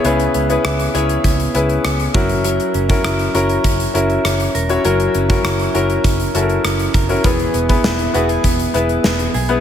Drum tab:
HH |xxxxxxxxxxxxxxxx|xxxxxxxxxxxxxxxx|xxxxxxxxxxxxxxxx|xxxx-xxxxxxx-xox|
SD |----r-------r---|----r-------r---|----r-------r---|----o-------o---|
BD |--------o-----o-|---o----o-------|---o----o-----o-|o--o----o-------|